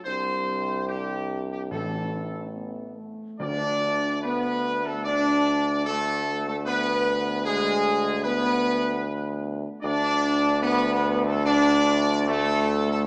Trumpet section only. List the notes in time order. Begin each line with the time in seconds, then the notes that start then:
0.05 C5
0.87 G4
1.52 G4
1.72 A4
3.40 D5
4.23 B4
4.86 A4
5.04 D5
5.86 A4
6.48 A4
6.66 B4
7.46 G#4
8.24 B4
9.83 D5
10.62 B4
11.27 A4
11.46 D5
12.29 A4
12.91 A4